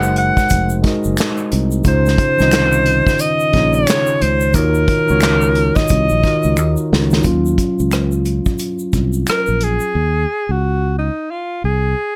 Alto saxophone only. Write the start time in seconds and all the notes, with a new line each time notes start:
Already playing: F#5
0.18 F#5
1.88 C5
3.21 D#5
3.74 C#5
4.22 C5
4.55 A#4
5.76 D#5
9.30 A#4
9.64 G#4
10.51 F#4
10.98 D#4
11.31 F4
11.65 G#4